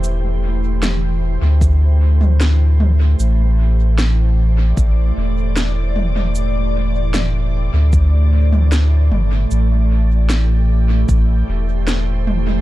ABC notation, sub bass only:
X:1
M:4/4
L:1/16
Q:1/4=76
K:C
V:1 name="Sub bass" clef=bass
E,,,6- E,,, D,,8- D,, | A,,,8 A,,,2 E,,,6- | E,,,6- E,,, D,,6- D,, G,,,2 | A,,,8 A,,,2 E,,,6 |]